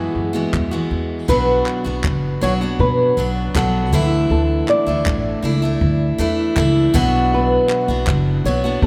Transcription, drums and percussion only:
0, 0, Header, 1, 2, 480
1, 0, Start_track
1, 0, Tempo, 753769
1, 820, Time_signature, 4, 2, 24, 8
1, 5647, End_track
2, 0, Start_track
2, 0, Title_t, "Drums"
2, 339, Note_on_c, 9, 36, 98
2, 344, Note_on_c, 9, 39, 83
2, 403, Note_off_c, 9, 36, 0
2, 407, Note_off_c, 9, 39, 0
2, 818, Note_on_c, 9, 36, 84
2, 819, Note_on_c, 9, 49, 74
2, 882, Note_off_c, 9, 36, 0
2, 882, Note_off_c, 9, 49, 0
2, 1058, Note_on_c, 9, 39, 77
2, 1122, Note_off_c, 9, 39, 0
2, 1298, Note_on_c, 9, 39, 93
2, 1300, Note_on_c, 9, 36, 103
2, 1362, Note_off_c, 9, 39, 0
2, 1364, Note_off_c, 9, 36, 0
2, 1779, Note_on_c, 9, 36, 98
2, 1843, Note_off_c, 9, 36, 0
2, 2260, Note_on_c, 9, 36, 91
2, 2264, Note_on_c, 9, 39, 93
2, 2324, Note_off_c, 9, 36, 0
2, 2328, Note_off_c, 9, 39, 0
2, 2500, Note_on_c, 9, 36, 101
2, 2564, Note_off_c, 9, 36, 0
2, 2981, Note_on_c, 9, 39, 76
2, 3045, Note_off_c, 9, 39, 0
2, 3222, Note_on_c, 9, 36, 107
2, 3222, Note_on_c, 9, 39, 100
2, 3286, Note_off_c, 9, 36, 0
2, 3286, Note_off_c, 9, 39, 0
2, 3701, Note_on_c, 9, 36, 105
2, 3765, Note_off_c, 9, 36, 0
2, 4180, Note_on_c, 9, 36, 100
2, 4182, Note_on_c, 9, 39, 89
2, 4244, Note_off_c, 9, 36, 0
2, 4246, Note_off_c, 9, 39, 0
2, 4421, Note_on_c, 9, 36, 104
2, 4485, Note_off_c, 9, 36, 0
2, 4899, Note_on_c, 9, 39, 84
2, 4963, Note_off_c, 9, 39, 0
2, 5138, Note_on_c, 9, 39, 95
2, 5140, Note_on_c, 9, 36, 98
2, 5202, Note_off_c, 9, 39, 0
2, 5204, Note_off_c, 9, 36, 0
2, 5618, Note_on_c, 9, 36, 99
2, 5647, Note_off_c, 9, 36, 0
2, 5647, End_track
0, 0, End_of_file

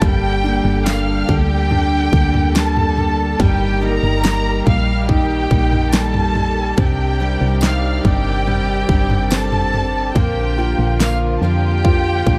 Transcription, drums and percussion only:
0, 0, Header, 1, 2, 480
1, 0, Start_track
1, 0, Tempo, 845070
1, 10, Time_signature, 4, 2, 24, 8
1, 7036, End_track
2, 0, Start_track
2, 0, Title_t, "Drums"
2, 8, Note_on_c, 9, 43, 119
2, 10, Note_on_c, 9, 36, 124
2, 65, Note_off_c, 9, 43, 0
2, 67, Note_off_c, 9, 36, 0
2, 489, Note_on_c, 9, 54, 78
2, 492, Note_on_c, 9, 38, 100
2, 546, Note_off_c, 9, 54, 0
2, 548, Note_off_c, 9, 38, 0
2, 732, Note_on_c, 9, 36, 82
2, 788, Note_off_c, 9, 36, 0
2, 971, Note_on_c, 9, 43, 66
2, 1028, Note_off_c, 9, 43, 0
2, 1209, Note_on_c, 9, 36, 95
2, 1266, Note_off_c, 9, 36, 0
2, 1329, Note_on_c, 9, 43, 68
2, 1386, Note_off_c, 9, 43, 0
2, 1448, Note_on_c, 9, 54, 72
2, 1452, Note_on_c, 9, 38, 111
2, 1505, Note_off_c, 9, 54, 0
2, 1509, Note_off_c, 9, 38, 0
2, 1571, Note_on_c, 9, 43, 72
2, 1628, Note_off_c, 9, 43, 0
2, 1690, Note_on_c, 9, 43, 56
2, 1747, Note_off_c, 9, 43, 0
2, 1930, Note_on_c, 9, 36, 127
2, 1933, Note_on_c, 9, 43, 113
2, 1986, Note_off_c, 9, 36, 0
2, 1989, Note_off_c, 9, 43, 0
2, 2406, Note_on_c, 9, 54, 86
2, 2412, Note_on_c, 9, 38, 105
2, 2463, Note_off_c, 9, 54, 0
2, 2469, Note_off_c, 9, 38, 0
2, 2651, Note_on_c, 9, 36, 90
2, 2651, Note_on_c, 9, 43, 61
2, 2708, Note_off_c, 9, 36, 0
2, 2708, Note_off_c, 9, 43, 0
2, 2890, Note_on_c, 9, 36, 82
2, 2894, Note_on_c, 9, 43, 59
2, 2947, Note_off_c, 9, 36, 0
2, 2951, Note_off_c, 9, 43, 0
2, 3129, Note_on_c, 9, 36, 97
2, 3186, Note_off_c, 9, 36, 0
2, 3251, Note_on_c, 9, 43, 59
2, 3308, Note_off_c, 9, 43, 0
2, 3365, Note_on_c, 9, 54, 80
2, 3371, Note_on_c, 9, 38, 108
2, 3422, Note_off_c, 9, 54, 0
2, 3427, Note_off_c, 9, 38, 0
2, 3487, Note_on_c, 9, 43, 69
2, 3544, Note_off_c, 9, 43, 0
2, 3609, Note_on_c, 9, 43, 63
2, 3665, Note_off_c, 9, 43, 0
2, 3850, Note_on_c, 9, 36, 127
2, 3850, Note_on_c, 9, 43, 115
2, 3906, Note_off_c, 9, 36, 0
2, 3907, Note_off_c, 9, 43, 0
2, 4322, Note_on_c, 9, 54, 88
2, 4333, Note_on_c, 9, 38, 109
2, 4379, Note_off_c, 9, 54, 0
2, 4390, Note_off_c, 9, 38, 0
2, 4571, Note_on_c, 9, 36, 90
2, 4628, Note_off_c, 9, 36, 0
2, 4813, Note_on_c, 9, 43, 68
2, 4869, Note_off_c, 9, 43, 0
2, 5049, Note_on_c, 9, 36, 89
2, 5106, Note_off_c, 9, 36, 0
2, 5167, Note_on_c, 9, 43, 66
2, 5224, Note_off_c, 9, 43, 0
2, 5285, Note_on_c, 9, 54, 79
2, 5292, Note_on_c, 9, 38, 103
2, 5342, Note_off_c, 9, 54, 0
2, 5349, Note_off_c, 9, 38, 0
2, 5409, Note_on_c, 9, 43, 73
2, 5465, Note_off_c, 9, 43, 0
2, 5531, Note_on_c, 9, 43, 55
2, 5588, Note_off_c, 9, 43, 0
2, 5769, Note_on_c, 9, 36, 126
2, 5770, Note_on_c, 9, 43, 116
2, 5826, Note_off_c, 9, 36, 0
2, 5827, Note_off_c, 9, 43, 0
2, 6250, Note_on_c, 9, 38, 99
2, 6251, Note_on_c, 9, 54, 86
2, 6306, Note_off_c, 9, 38, 0
2, 6308, Note_off_c, 9, 54, 0
2, 6729, Note_on_c, 9, 36, 88
2, 6730, Note_on_c, 9, 43, 57
2, 6786, Note_off_c, 9, 36, 0
2, 6787, Note_off_c, 9, 43, 0
2, 6967, Note_on_c, 9, 36, 98
2, 7024, Note_off_c, 9, 36, 0
2, 7036, End_track
0, 0, End_of_file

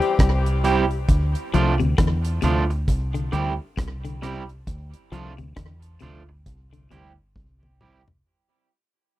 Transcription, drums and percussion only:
0, 0, Header, 1, 2, 480
1, 0, Start_track
1, 0, Tempo, 895924
1, 583, Time_signature, 4, 2, 24, 8
1, 4927, End_track
2, 0, Start_track
2, 0, Title_t, "Drums"
2, 9, Note_on_c, 9, 42, 35
2, 63, Note_off_c, 9, 42, 0
2, 102, Note_on_c, 9, 36, 112
2, 105, Note_on_c, 9, 42, 86
2, 107, Note_on_c, 9, 37, 127
2, 155, Note_off_c, 9, 36, 0
2, 158, Note_off_c, 9, 42, 0
2, 161, Note_off_c, 9, 37, 0
2, 248, Note_on_c, 9, 42, 56
2, 302, Note_off_c, 9, 42, 0
2, 345, Note_on_c, 9, 42, 79
2, 399, Note_off_c, 9, 42, 0
2, 485, Note_on_c, 9, 42, 34
2, 539, Note_off_c, 9, 42, 0
2, 582, Note_on_c, 9, 36, 98
2, 582, Note_on_c, 9, 42, 88
2, 635, Note_off_c, 9, 36, 0
2, 635, Note_off_c, 9, 42, 0
2, 724, Note_on_c, 9, 42, 53
2, 777, Note_off_c, 9, 42, 0
2, 825, Note_on_c, 9, 42, 72
2, 878, Note_off_c, 9, 42, 0
2, 965, Note_on_c, 9, 42, 36
2, 1019, Note_off_c, 9, 42, 0
2, 1063, Note_on_c, 9, 36, 101
2, 1063, Note_on_c, 9, 37, 108
2, 1063, Note_on_c, 9, 42, 77
2, 1116, Note_off_c, 9, 36, 0
2, 1116, Note_off_c, 9, 37, 0
2, 1116, Note_off_c, 9, 42, 0
2, 1203, Note_on_c, 9, 42, 63
2, 1257, Note_off_c, 9, 42, 0
2, 1297, Note_on_c, 9, 42, 75
2, 1350, Note_off_c, 9, 42, 0
2, 1450, Note_on_c, 9, 42, 36
2, 1503, Note_off_c, 9, 42, 0
2, 1542, Note_on_c, 9, 36, 111
2, 1543, Note_on_c, 9, 42, 90
2, 1596, Note_off_c, 9, 36, 0
2, 1597, Note_off_c, 9, 42, 0
2, 1687, Note_on_c, 9, 42, 57
2, 1741, Note_off_c, 9, 42, 0
2, 1784, Note_on_c, 9, 42, 70
2, 1837, Note_off_c, 9, 42, 0
2, 2023, Note_on_c, 9, 36, 115
2, 2025, Note_on_c, 9, 42, 88
2, 2028, Note_on_c, 9, 37, 122
2, 2076, Note_off_c, 9, 36, 0
2, 2079, Note_off_c, 9, 42, 0
2, 2082, Note_off_c, 9, 37, 0
2, 2169, Note_on_c, 9, 42, 62
2, 2223, Note_off_c, 9, 42, 0
2, 2267, Note_on_c, 9, 42, 82
2, 2268, Note_on_c, 9, 37, 62
2, 2321, Note_off_c, 9, 37, 0
2, 2321, Note_off_c, 9, 42, 0
2, 2407, Note_on_c, 9, 42, 34
2, 2460, Note_off_c, 9, 42, 0
2, 2503, Note_on_c, 9, 36, 100
2, 2504, Note_on_c, 9, 42, 87
2, 2556, Note_off_c, 9, 36, 0
2, 2557, Note_off_c, 9, 42, 0
2, 2644, Note_on_c, 9, 42, 57
2, 2698, Note_off_c, 9, 42, 0
2, 2746, Note_on_c, 9, 42, 69
2, 2800, Note_off_c, 9, 42, 0
2, 2885, Note_on_c, 9, 42, 34
2, 2939, Note_off_c, 9, 42, 0
2, 2982, Note_on_c, 9, 37, 106
2, 2983, Note_on_c, 9, 36, 105
2, 2983, Note_on_c, 9, 42, 78
2, 3036, Note_off_c, 9, 36, 0
2, 3036, Note_off_c, 9, 37, 0
2, 3036, Note_off_c, 9, 42, 0
2, 3120, Note_on_c, 9, 42, 58
2, 3174, Note_off_c, 9, 42, 0
2, 3214, Note_on_c, 9, 42, 73
2, 3267, Note_off_c, 9, 42, 0
2, 3462, Note_on_c, 9, 36, 114
2, 3462, Note_on_c, 9, 42, 92
2, 3515, Note_off_c, 9, 36, 0
2, 3516, Note_off_c, 9, 42, 0
2, 3608, Note_on_c, 9, 42, 57
2, 3661, Note_off_c, 9, 42, 0
2, 3704, Note_on_c, 9, 42, 71
2, 3758, Note_off_c, 9, 42, 0
2, 3942, Note_on_c, 9, 36, 114
2, 3943, Note_on_c, 9, 48, 61
2, 3995, Note_off_c, 9, 36, 0
2, 3997, Note_off_c, 9, 48, 0
2, 4087, Note_on_c, 9, 47, 61
2, 4141, Note_off_c, 9, 47, 0
2, 4183, Note_on_c, 9, 45, 88
2, 4236, Note_off_c, 9, 45, 0
2, 4327, Note_on_c, 9, 43, 88
2, 4380, Note_off_c, 9, 43, 0
2, 4927, End_track
0, 0, End_of_file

